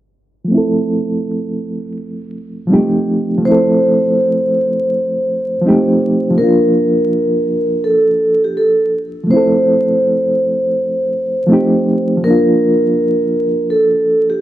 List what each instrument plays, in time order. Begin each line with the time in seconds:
0.44 reed electric piano F3 A3
0.51 reed electric piano C4 E4
0.58 reed electric piano A4
2.67 reed electric piano F3 G3 C4
2.72 reed electric piano A3 D#4 G4
3.38 reed electric piano F3 A3
3.45 reed electric piano C4 E4, vibraphone C5
3.51 reed electric piano A4
5.62 reed electric piano F3 G#3 C4
5.67 reed electric piano A3 D#4 G4
6.31 reed electric piano F3
6.38 reed electric piano A#3 D4, vibraphone A#4
6.44 reed electric piano F4
7.84 vibraphone A4
8.44 vibraphone G4
8.57 vibraphone A4
9.24 reed electric piano F3 A3
9.30 reed electric piano C4 E4, vibraphone C5
9.37 reed electric piano A4
11.47 reed electric piano F3 A3 C4
11.51 reed electric piano D#4 G4
12.17 reed electric piano F3
12.24 reed electric piano A#3 D4, vibraphone A#4
12.30 reed electric piano F4
13.70 vibraphone A4
14.30 vibraphone G4